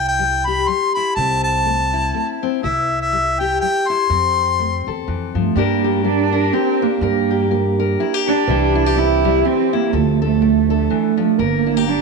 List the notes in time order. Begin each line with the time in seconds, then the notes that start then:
Already playing: C2 C3 E4
0.08 G5
0.19 G3
0.46 G4 B5
0.68 G3 C6
0.94 E4 B5
1.15 C2 C3 C4 A5
1.43 A5
1.66 A3
1.94 E4
2.14 A3
2.43 C4
2.63 C2 C3 E4 E5
3.01 E5
3.13 G3
3.39 G4 G5
3.61 G3 G5
3.88 E4 C6
4.10 F2 F3 C4
4.59 A3
4.87 E2 A4
5.07 F2 E3
5.35 G2 F3 A3
5.56 G2 G3 A#3 D4 G4 A#4
5.84 D4 G4
6.04 G3 A#3 D4
6.32 D4 A#4
6.53 G3 C4 G4
6.81 A#3 D4
7.01 G2 G3 A#4
7.30 D4 G4
7.51 G3 A#3
7.78 D4 A#4
7.99 G3 E4 G4
8.14 G4
8.27 D4
8.47 C2 C3 E3 G3 E4 G4
8.75 E4
8.86 G4
8.96 G3 C4 E4
9.24 G3 E4
9.45 G3 C4 G4
9.73 A#3 E4
9.93 D2 D3 F3 A3 A4
10.21 A3 D4 A4
10.41 A3
10.69 D4 A4
10.90 E3 A4
11.17 F3 A3 D4
11.38 G1 G2 A#3 A#4
11.66 D4 E4
11.77 G4
11.87 G3 A#3 D4